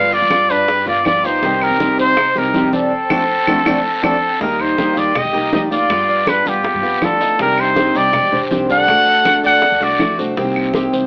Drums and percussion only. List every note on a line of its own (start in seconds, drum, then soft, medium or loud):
0.12 high conga soft
0.30 high bongo medium
0.30 high conga loud
0.30 short guiro medium
0.30 claves medium
0.50 high bongo soft
0.50 high conga soft
0.50 short guiro medium
0.68 high bongo medium
0.68 high conga soft
0.68 long guiro medium
0.87 high bongo soft
0.87 high conga soft
1.05 high bongo soft
1.05 low bongo medium
1.05 high conga medium
1.05 short guiro medium
1.05 claves medium
1.24 high bongo soft
1.24 short guiro medium
1.43 high bongo medium
1.43 high conga soft
1.43 long guiro medium
1.61 high conga soft
1.61 claves medium
1.80 high bongo medium
1.80 high conga medium
1.80 short guiro medium
1.98 high bongo soft
1.98 high conga soft
1.98 short guiro medium
2.17 high bongo medium
2.17 high conga soft
2.17 long guiro medium
2.17 claves medium
2.36 high bongo soft
2.36 high conga soft
2.54 high bongo soft
2.54 low bongo medium
2.54 high conga medium
2.54 short guiro medium
2.73 high bongo soft
2.73 high conga medium
2.73 short guiro medium
3.10 low bongo medium
3.10 high conga loud
3.10 long guiro medium
3.10 claves loud
3.47 low bongo medium
3.47 high conga loud
3.47 long guiro loud
3.47 claves loud
3.66 low bongo medium
3.66 high conga medium
3.66 long guiro loud
3.66 claves loud
4.03 low bongo medium
4.03 high conga loud
4.03 long guiro medium
4.03 claves medium
4.41 high bongo medium
4.41 high conga soft
4.41 long guiro medium
4.60 high conga soft
4.60 claves medium
4.78 high bongo medium
4.78 high conga medium
4.78 short guiro medium
4.97 high bongo soft
4.97 high conga soft
4.97 short guiro medium
5.15 high bongo medium
5.15 high conga soft
5.15 low conga medium
5.15 long guiro medium
5.15 claves medium
5.34 high bongo soft
5.34 high conga soft
5.53 high bongo soft
5.53 low bongo medium
5.53 high conga medium
5.53 short guiro medium
5.71 high bongo soft
5.71 short guiro medium
5.90 high bongo medium
5.90 high conga soft
5.90 long guiro medium
5.90 claves medium
6.09 high conga soft
6.27 high bongo medium
6.27 high conga medium
6.27 short guiro medium
6.27 claves medium
6.46 high bongo soft
6.46 high conga soft
6.46 short guiro medium
6.64 high bongo medium
6.64 high conga soft
6.64 long guiro medium
6.83 high bongo soft
6.83 high conga soft
7.02 high bongo soft
7.02 low bongo medium
7.02 high conga medium
7.02 short guiro medium
7.02 claves medium
7.21 high bongo soft
7.21 short guiro medium
7.39 high bongo medium
7.39 high conga soft
7.39 long guiro medium
7.58 high conga soft
7.58 claves medium
7.76 high bongo medium
7.76 high conga medium
7.76 short guiro medium
7.95 high bongo soft
7.95 high conga soft
7.95 short guiro medium
8.13 high bongo medium
8.13 high conga soft
8.13 low conga medium
8.13 long guiro medium
8.13 claves medium
8.32 high bongo soft
8.32 high conga soft
8.32 low conga medium
8.51 high bongo soft
8.51 low bongo medium
8.51 high conga medium
8.51 short guiro medium
8.69 high bongo soft
8.69 short guiro medium
8.88 high bongo medium
8.88 high conga soft
8.88 long guiro medium
8.88 claves medium
9.07 high conga soft
9.25 high bongo medium
9.25 high conga loud
9.25 short guiro medium
9.25 claves medium
9.44 high bongo soft
9.44 high conga soft
9.44 short guiro medium
9.62 high bongo medium
9.62 high conga soft
9.62 long guiro medium
9.81 high bongo soft
9.81 high conga soft
9.99 high bongo soft
9.99 low bongo medium
9.99 high conga medium
9.99 short guiro medium
9.99 claves medium
10.19 high bongo soft
10.19 short guiro medium
10.37 high bongo medium
10.37 high conga soft
10.37 long guiro medium
10.55 high conga soft
10.55 claves medium
10.74 high bongo medium
10.74 high conga medium
10.74 short guiro medium
10.93 high bongo soft
10.93 high conga soft
10.93 short guiro medium